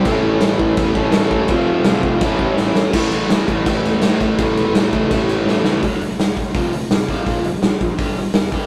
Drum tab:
CC |x-x-x-x-|x-x-x---|xxxxxxxx|xxxxxx--|
HH |--------|--------|--------|--------|
SD |--o---o-|--o---oo|--o---o-|--o---oo|
BD |o--ooo-o|o--ooo--|o--oo--o|o--oo---|

CC |--------|--------|
HH |oooooooo|oooooooo|
SD |--o---o-|--o---o-|
BD |o--oo--o|o--oo--o|